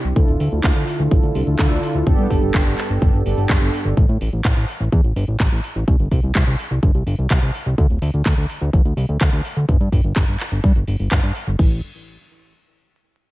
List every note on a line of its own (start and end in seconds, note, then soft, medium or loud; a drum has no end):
0.00 0.13 C3 medium
0.00 0.13 C4 medium
0.00 0.13 D4 medium
0.00 0.13 E4 medium
0.00 0.13 G4 loud
0.04 0.13 C2 medium
0.04 closed hi-hat soft
0.16 0.25 D2 loud
0.16 1.56 D3 medium
0.16 1.56 D4 medium
0.16 1.56 E4 medium
0.16 1.56 F4 medium
0.16 1.56 A4 medium
0.16 kick loud
0.16 closed hi-hat medium
0.28 0.37 D1 medium
0.28 closed hi-hat soft
0.40 0.49 D2 medium
0.40 open hi-hat loud
0.52 0.61 D2 medium
0.52 closed hi-hat soft
0.64 0.73 D2 loud
0.64 kick loud
0.64 clap loud
0.64 closed hi-hat medium
0.76 0.84 D2 medium
0.76 closed hi-hat soft
0.88 open hi-hat loud
1.00 1.08 D2 medium
1.00 closed hi-hat soft
1.11 1.20 A1 loud
1.11 kick loud
1.11 closed hi-hat medium
1.23 1.32 D2 medium
1.23 closed hi-hat soft
1.35 1.44 C2 medium
1.35 open hi-hat loud
1.47 1.56 D2 medium
1.47 closed hi-hat soft
1.59 1.68 D2 loud
1.59 2.04 D3 medium
1.59 2.04 D4 medium
1.59 2.04 E4 medium
1.59 2.04 F4 medium
1.59 2.04 A4 loud
1.59 kick loud
1.59 clap loud
1.59 closed hi-hat medium
1.71 1.80 D2 medium
1.71 closed hi-hat soft
1.83 open hi-hat loud
1.95 2.03 D2 medium
1.95 closed hi-hat soft
2.07 2.15 G1 loud
2.07 3.23 G2 medium
2.07 3.23 B3 medium
2.07 3.23 D4 medium
2.07 3.23 G4 medium
2.07 3.23 A4 loud
2.07 kick loud
2.07 closed hi-hat medium
2.18 2.27 G2 medium
2.18 closed hi-hat soft
2.30 2.39 G1 medium
2.30 kick medium
2.30 open hi-hat loud
2.42 2.51 G1 medium
2.42 closed hi-hat soft
2.54 2.63 G1 loud
2.54 kick loud
2.54 clap loud
2.54 closed hi-hat medium
2.66 2.75 G1 medium
2.66 closed hi-hat soft
2.78 clap medium
2.78 open hi-hat loud
2.90 2.99 G1 medium
2.90 closed hi-hat soft
3.02 3.11 G1 loud
3.02 kick loud
3.02 closed hi-hat medium
3.14 3.23 G1 medium
3.14 closed hi-hat soft
3.26 3.34 G1 loud
3.26 3.94 G2 medium
3.26 3.94 B3 medium
3.26 3.94 D4 medium
3.26 3.94 G4 medium
3.26 3.94 A4 loud
3.26 open hi-hat loud
3.38 3.46 G1 medium
3.38 open hi-hat medium
3.50 3.58 G1 loud
3.50 kick loud
3.50 clap loud
3.50 closed hi-hat medium
3.61 3.70 G1 medium
3.61 closed hi-hat soft
3.73 open hi-hat loud
3.85 3.94 G1 medium
3.85 closed hi-hat soft
3.97 4.06 A1 loud
3.97 kick loud
3.97 closed hi-hat medium
4.09 4.18 A2 medium
4.09 closed hi-hat soft
4.21 4.30 A1 loud
4.21 open hi-hat loud
4.33 4.42 A1 medium
4.33 closed hi-hat soft
4.45 4.53 A1 loud
4.45 kick loud
4.45 clap loud
4.45 closed hi-hat medium
4.57 4.65 A1 medium
4.57 closed hi-hat soft
4.69 open hi-hat loud
4.80 4.89 A1 medium
4.80 closed hi-hat soft
4.92 5.01 E2 loud
4.92 kick loud
4.92 closed hi-hat medium
5.04 5.13 A1 medium
5.04 closed hi-hat soft
5.16 5.25 G1 loud
5.16 open hi-hat loud
5.28 5.37 A1 medium
5.28 closed hi-hat soft
5.40 5.49 A1 loud
5.40 kick loud
5.40 clap loud
5.40 closed hi-hat medium
5.52 5.61 A1 medium
5.52 closed hi-hat soft
5.64 open hi-hat loud
5.76 5.84 A1 medium
5.76 closed hi-hat soft
5.88 5.96 C2 loud
5.88 kick loud
5.88 closed hi-hat medium
6.00 6.08 G1 medium
6.00 closed hi-hat soft
6.11 6.20 C2 loud
6.11 kick medium
6.11 open hi-hat loud
6.23 6.32 C2 medium
6.23 closed hi-hat soft
6.35 6.44 C2 loud
6.35 kick loud
6.35 clap loud
6.35 closed hi-hat medium
6.47 6.56 C2 medium
6.47 closed hi-hat soft
6.59 open hi-hat loud
6.71 6.80 C2 medium
6.71 closed hi-hat soft
6.83 6.92 G1 loud
6.83 kick loud
6.83 closed hi-hat medium
6.95 7.03 C2 medium
6.95 closed hi-hat soft
7.07 7.15 G1 medium
7.07 open hi-hat loud
7.18 7.27 C2 medium
7.18 closed hi-hat soft
7.30 7.39 C2 loud
7.30 kick loud
7.30 clap loud
7.30 closed hi-hat medium
7.42 7.51 C2 medium
7.42 closed hi-hat soft
7.54 open hi-hat loud
7.66 7.75 C2 medium
7.66 closed hi-hat soft
7.78 7.87 D2 loud
7.78 kick loud
7.78 closed hi-hat medium
7.90 7.99 D1 medium
7.90 closed hi-hat soft
8.02 8.11 D2 loud
8.02 open hi-hat loud
8.14 8.23 D2 medium
8.14 closed hi-hat soft
8.26 8.34 D2 loud
8.26 kick loud
8.26 clap loud
8.26 closed hi-hat medium
8.38 8.46 D2 medium
8.38 closed hi-hat soft
8.50 open hi-hat loud
8.61 8.70 D2 medium
8.61 closed hi-hat soft
8.73 8.82 A1 loud
8.73 kick loud
8.73 closed hi-hat medium
8.85 8.94 D2 medium
8.85 closed hi-hat soft
8.97 9.06 C2 medium
8.97 open hi-hat loud
9.09 9.18 D2 medium
9.09 closed hi-hat soft
9.21 9.30 D2 loud
9.21 kick loud
9.21 clap loud
9.21 closed hi-hat medium
9.33 9.42 D2 medium
9.33 closed hi-hat soft
9.45 open hi-hat loud
9.57 9.65 D2 medium
9.57 closed hi-hat soft
9.69 9.77 G1 loud
9.69 kick loud
9.69 closed hi-hat medium
9.80 9.89 G2 medium
9.80 closed hi-hat soft
9.92 10.01 G1 medium
9.92 kick medium
9.92 open hi-hat loud
10.04 10.13 G1 medium
10.04 closed hi-hat soft
10.16 10.25 G1 loud
10.16 kick loud
10.16 clap loud
10.16 closed hi-hat medium
10.28 10.37 G1 medium
10.28 closed hi-hat soft
10.40 clap medium
10.40 open hi-hat loud
10.52 10.61 G1 medium
10.52 closed hi-hat soft
10.64 10.72 G2 loud
10.64 kick loud
10.64 closed hi-hat medium
10.76 10.84 G1 medium
10.76 closed hi-hat soft
10.87 10.96 G1 loud
10.87 open hi-hat loud
10.99 11.08 G1 medium
10.99 open hi-hat medium
11.11 11.20 G1 loud
11.11 kick loud
11.11 clap loud
11.11 closed hi-hat medium
11.23 11.32 G2 medium
11.23 closed hi-hat soft
11.35 open hi-hat loud
11.47 11.56 G1 medium
11.47 closed hi-hat soft
11.59 11.81 A1 loud
11.59 kick loud
11.59 crash medium